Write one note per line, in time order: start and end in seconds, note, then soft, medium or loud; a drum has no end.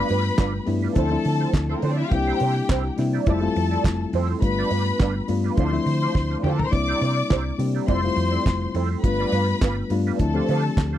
0.00 0.35 G3 medium
0.00 0.35 A3 medium
0.00 0.35 B3 medium
0.00 0.35 D4 medium
0.00 0.36 F4 medium
0.00 0.65 B4 medium
0.00 0.11 D5 medium
0.00 0.65 B5 loud
0.09 0.30 G2 medium
0.09 0.26 G3 medium
0.09 0.25 D4 medium
0.09 0.25 F4 medium
0.09 0.24 B4 medium
0.09 open hi-hat medium
0.25 muted clean electric guitar stroke soft
0.38 0.58 G1 medium
0.38 0.59 G3 medium
0.38 0.54 D4 medium
0.38 0.54 F4 medium
0.38 0.53 B4 loud
0.38 kick loud
0.38 snare loud
0.38 clap medium
0.38 closed hi-hat medium
0.54 muted clean electric guitar stroke soft
0.66 0.87 G2 medium
0.66 0.94 G3 medium
0.66 0.93 A3 medium
0.66 0.94 B3 medium
0.66 0.94 D4 medium
0.66 0.95 E4 medium
0.66 muted clean electric guitar stroke soft
0.66 open hi-hat medium
0.82 0.96 G3 soft
0.82 0.97 D4 medium
0.82 0.96 F4 medium
0.82 0.97 B4 medium
0.94 1.16 D2 medium
0.94 1.07 F3 medium
0.94 1.08 A3 medium
0.94 1.08 C4 medium
0.94 1.17 C4 medium
0.94 1.08 D4 medium
0.94 1.08 E4 medium
0.94 1.12 F4 medium
0.94 1.62 A4 medium
0.94 1.11 A4 medium
0.94 1.10 C5 medium
0.94 1.61 A5 medium
0.94 kick medium
0.94 closed hi-hat medium
1.10 1.74 F3 medium
1.10 1.74 A3 medium
1.10 1.74 C4 medium
1.10 1.75 D4 medium
1.10 1.75 E4 loud
1.10 muted clean electric guitar stroke soft
1.25 1.45 D3 loud
1.25 muted clean electric guitar stroke soft
1.25 open hi-hat medium
1.40 1.53 C4 soft
1.40 1.53 F4 soft
1.40 1.54 A4 medium
1.40 1.54 C5 soft
1.53 1.73 D2 medium
1.53 kick loud
1.53 snare loud
1.53 clap medium
1.53 closed hi-hat medium
1.69 1.76 A3 medium
1.69 1.82 C4 medium
1.69 1.82 F4 medium
1.69 1.76 A4 medium
1.69 1.83 A4 medium
1.69 1.83 C5 medium
1.76 1.83 A#3 medium
1.76 1.83 A#4 medium
1.82 2.02 D3 medium
1.82 1.90 C4 medium
1.82 2.03 C4 medium
1.82 1.99 F4 medium
1.82 1.99 A4 medium
1.82 1.90 C5 medium
1.82 1.98 C5 medium
1.82 open hi-hat medium
1.90 1.98 D4 medium
1.90 1.98 D5 medium
1.98 2.05 E4 medium
1.98 2.05 E5 medium
1.98 muted clean electric guitar stroke soft
2.04 2.11 F4 medium
2.04 2.11 F5 medium
2.11 2.31 C2 loud
2.11 2.66 G3 medium
2.11 2.66 A#3 medium
2.11 2.66 C4 medium
2.11 2.66 D4 medium
2.11 2.67 E4 medium
2.11 2.96 G4 medium
2.11 2.96 G5 loud
2.11 muted clean electric guitar stroke soft
2.11 kick loud
2.11 closed hi-hat medium
2.27 2.40 A#3 medium
2.27 2.40 E4 medium
2.27 2.41 G4 medium
2.27 2.42 C5 medium
2.40 2.60 C3 loud
2.40 2.57 A#3 medium
2.40 2.56 E4 medium
2.40 2.55 G4 medium
2.40 2.55 C5 medium
2.40 open hi-hat medium
2.56 muted clean electric guitar stroke soft
2.69 2.89 C2 medium
2.69 2.89 A#3 medium
2.69 2.85 E4 medium
2.69 2.85 G4 medium
2.69 2.84 C5 loud
2.69 kick loud
2.69 snare loud
2.69 clap medium
2.69 closed hi-hat medium
2.85 muted clean electric guitar stroke soft
2.97 3.18 C3 medium
2.97 3.25 G3 medium
2.97 3.25 A#3 medium
2.97 3.25 C4 medium
2.97 3.25 D4 medium
2.97 3.26 E4 medium
2.97 muted clean electric guitar stroke soft
2.97 snare soft
2.97 open hi-hat medium
3.13 3.27 A#3 medium
3.13 3.27 E4 medium
3.13 3.28 G4 medium
3.13 3.28 D5 medium
3.26 3.47 F1 loud
3.26 3.39 G3 medium
3.26 3.39 A3 medium
3.26 3.39 C4 medium
3.26 3.47 C4 medium
3.26 3.39 E4 medium
3.26 3.43 E4 medium
3.26 3.39 F4 medium
3.26 4.12 A4 medium
3.26 3.42 A4 medium
3.26 3.42 D5 loud
3.26 4.12 A5 medium
3.26 kick loud
3.26 closed hi-hat medium
3.41 4.05 G3 medium
3.41 4.05 A3 medium
3.41 4.05 C4 medium
3.41 4.06 E4 medium
3.41 4.06 F4 medium
3.41 muted clean electric guitar stroke medium
3.56 3.76 F2 loud
3.56 muted clean electric guitar stroke soft
3.56 open hi-hat medium
3.71 3.84 C4 soft
3.71 3.85 E4 medium
3.71 3.85 A4 medium
3.71 3.86 D5 medium
3.84 4.04 F1 medium
3.84 muted clean electric guitar stroke soft
3.84 kick loud
3.84 snare loud
3.84 clap loud
3.84 closed hi-hat medium
4.01 muted clean electric guitar stroke soft
4.13 4.33 F2 loud
4.13 4.30 C4 medium
4.13 4.29 E4 loud
4.13 4.29 A4 medium
4.13 4.28 C5 loud
4.13 open hi-hat medium
4.29 4.42 C4 soft
4.29 4.43 E4 medium
4.29 4.43 A4 medium
4.29 4.44 C5 medium
4.41 4.62 G1 loud
4.41 4.97 G3 medium
4.41 4.97 A3 medium
4.41 4.97 B3 medium
4.41 4.97 D4 medium
4.41 4.97 F4 medium
4.41 5.27 B4 medium
4.41 5.27 B5 loud
4.41 muted clean electric guitar stroke soft
4.41 kick loud
4.41 closed hi-hat medium
4.59 4.70 G3 medium
4.59 4.70 D4 medium
4.59 4.71 F4 medium
4.59 4.72 D5 medium
4.71 4.91 G2 loud
4.71 4.88 G3 medium
4.71 4.87 D4 medium
4.71 4.87 F4 medium
4.71 4.86 B4 medium
4.71 open hi-hat medium
4.87 muted clean electric guitar stroke soft
4.99 5.20 G1 medium
4.99 5.21 G3 medium
4.99 5.16 D4 medium
4.99 5.15 F4 medium
4.99 5.14 B4 medium
4.99 kick loud
4.99 snare loud
4.99 clap medium
4.99 closed hi-hat medium
5.16 muted clean electric guitar stroke soft
5.28 5.48 G2 medium
5.28 5.56 G3 medium
5.28 5.55 A3 medium
5.28 5.56 B3 medium
5.28 5.56 D4 medium
5.28 5.56 F4 medium
5.28 muted clean electric guitar stroke soft
5.28 open hi-hat medium
5.44 5.57 G3 soft
5.44 5.57 D4 medium
5.44 5.57 F4 medium
5.44 5.59 B4 medium
5.57 5.77 D2 medium
5.57 5.69 F3 medium
5.57 5.69 A3 medium
5.57 5.78 A3 loud
5.57 5.70 C4 medium
5.57 5.70 D4 medium
5.57 5.73 D4 medium
5.57 5.70 E4 medium
5.57 5.72 F4 medium
5.57 6.37 C5 medium
5.57 5.72 C5 medium
5.57 6.37 C6 medium
5.57 kick loud
5.57 closed hi-hat medium
5.72 6.36 F3 medium
5.72 6.36 A3 medium
5.72 6.36 C4 medium
5.72 6.36 D4 medium
5.72 6.36 E4 loud
5.72 muted clean electric guitar stroke medium
5.86 6.06 D3 medium
5.86 muted clean electric guitar stroke soft
5.86 open hi-hat medium
6.02 6.15 A3 medium
6.02 6.15 D4 medium
6.02 6.16 F4 medium
6.02 6.16 C5 medium
6.15 6.35 D2 medium
6.15 kick loud
6.15 snare medium
6.30 6.43 A3 medium
6.30 6.44 D4 medium
6.30 6.45 F4 medium
6.30 6.45 C5 medium
6.43 6.63 D3 loud
6.43 6.65 A3 medium
6.43 6.61 D4 medium
6.43 6.60 F4 loud
6.43 6.52 G4 medium
6.43 6.59 C5 medium
6.43 6.52 G5 medium
6.43 mid tom medium
6.51 6.59 A4 medium
6.51 6.59 A5 medium
6.59 6.66 A#4 medium
6.59 6.66 A#5 medium
6.59 muted clean electric guitar stroke soft
6.59 floor tom medium
6.65 6.73 C5 medium
6.65 6.73 C6 medium
6.71 6.93 C2 medium
6.71 7.27 G3 medium
6.71 7.27 A#3 medium
6.71 7.27 C4 medium
6.71 7.27 D4 medium
6.71 7.28 E4 medium
6.71 7.58 D5 medium
6.71 7.57 D6 loud
6.71 muted clean electric guitar stroke soft
6.71 kick loud
6.71 closed hi-hat medium
6.88 7.02 A#3 medium
6.88 7.02 E4 medium
6.88 7.03 G4 medium
6.88 7.03 C5 medium
7.01 7.21 C3 loud
7.01 7.19 A#3 medium
7.01 7.18 E4 medium
7.01 7.17 G4 medium
7.01 7.17 C5 medium
7.01 open hi-hat medium
7.18 muted clean electric guitar stroke medium
7.30 7.51 C2 medium
7.30 7.51 A#3 medium
7.30 7.46 E4 medium
7.30 7.45 G4 medium
7.30 7.44 C5 medium
7.30 kick loud
7.30 snare loud
7.30 clap medium
7.30 closed hi-hat medium
7.45 muted clean electric guitar stroke soft
7.58 7.79 C3 medium
7.58 7.86 G3 medium
7.58 7.87 A#3 medium
7.58 7.87 C4 medium
7.58 7.87 D4 medium
7.58 7.87 G4 medium
7.58 muted clean electric guitar stroke soft
7.58 open hi-hat medium
7.75 7.87 A#3 soft
7.75 7.87 E4 medium
7.75 7.89 G4 medium
7.75 7.88 D5 medium
7.87 8.08 F1 loud
7.87 8.00 G3 medium
7.87 8.00 A3 medium
7.87 8.09 C4 medium
7.87 8.01 C4 medium
7.87 8.01 E4 medium
7.87 8.03 E4 medium
7.87 8.01 F4 medium
7.87 8.03 A4 medium
7.87 8.73 C5 medium
7.87 8.03 D5 loud
7.87 8.73 C6 loud
7.87 kick loud
7.87 closed hi-hat medium
8.03 8.67 G3 medium
8.03 8.67 A3 medium
8.03 8.67 C4 medium
8.03 8.67 E4 medium
8.03 8.68 F4 loud
8.03 muted clean electric guitar stroke soft
8.17 8.37 F2 loud
8.17 muted clean electric guitar stroke soft
8.17 open hi-hat medium
8.31 8.44 C4 medium
8.31 8.44 E4 soft
8.31 8.45 A4 medium
8.31 8.46 D5 medium
8.45 8.66 F1 medium
8.45 muted clean electric guitar stroke soft
8.45 kick loud
8.45 snare loud
8.45 clap medium
8.45 closed hi-hat medium
8.62 muted clean electric guitar stroke soft
8.75 8.94 F2 loud
8.75 8.91 C4 medium
8.75 8.90 E4 medium
8.75 8.90 A4 medium
8.75 8.89 C5 medium
8.75 open hi-hat medium
8.90 9.04 C4 soft
8.90 9.05 E4 medium
8.90 9.06 A4 soft
8.90 9.05 C5 medium
9.03 9.24 G1 loud
9.03 9.59 G3 medium
9.03 9.59 A3 medium
9.03 9.59 B3 medium
9.03 9.59 D4 medium
9.03 9.59 F4 medium
9.03 9.89 B4 medium
9.03 9.89 B5 loud
9.03 muted clean electric guitar stroke soft
9.03 kick loud
9.03 closed hi-hat medium
9.20 9.32 G3 medium
9.20 9.32 D4 medium
9.20 9.33 F4 medium
9.20 9.34 D5 medium
9.32 9.52 G2 loud
9.32 9.49 G3 medium
9.32 9.49 D4 medium
9.32 9.48 F4 medium
9.32 9.47 B4 medium
9.32 open hi-hat medium
9.61 9.81 G1 loud
9.61 9.83 G3 medium
9.61 9.78 D4 medium
9.61 9.77 F4 medium
9.61 9.76 B4 medium
9.61 kick loud
9.61 snare loud
9.61 clap medium
9.61 closed hi-hat medium
9.77 muted clean electric guitar stroke soft
9.90 10.10 G2 medium
9.90 10.18 G3 medium
9.90 10.18 A3 medium
9.90 10.18 B3 medium
9.90 10.18 D4 medium
9.90 10.19 F4 medium
9.90 muted clean electric guitar stroke soft
9.90 open hi-hat medium
10.07 10.20 G3 medium
10.07 10.19 D4 medium
10.07 10.20 F4 medium
10.07 10.21 B4 medium
10.19 10.39 D2 medium
10.19 10.32 F3 medium
10.19 10.32 A3 medium
10.19 10.32 C4 medium
10.19 10.32 D4 medium
10.19 10.32 E4 loud
10.19 10.98 A4 medium
10.19 10.98 A5 medium
10.19 kick medium
10.19 closed hi-hat medium
10.34 10.98 F3 medium
10.34 10.98 A3 medium
10.34 10.47 A3 medium
10.34 10.98 C4 medium
10.34 10.98 D4 medium
10.34 10.48 D4 medium
10.34 10.48 F4 medium
10.34 10.98 G4 medium
10.34 10.49 C5 medium
10.48 10.68 D3 medium
10.48 10.69 A3 medium
10.48 10.65 D4 medium
10.48 10.64 F4 medium
10.48 10.63 C5 medium
10.48 open hi-hat medium
10.77 10.97 D2 medium
10.77 muted clean electric guitar stroke soft
10.77 kick loud
10.77 snare loud
10.77 clap medium
10.77 closed hi-hat medium
10.93 10.98 A3 medium
10.93 10.98 D4 medium
10.93 10.98 F4 medium
10.93 10.98 C5 medium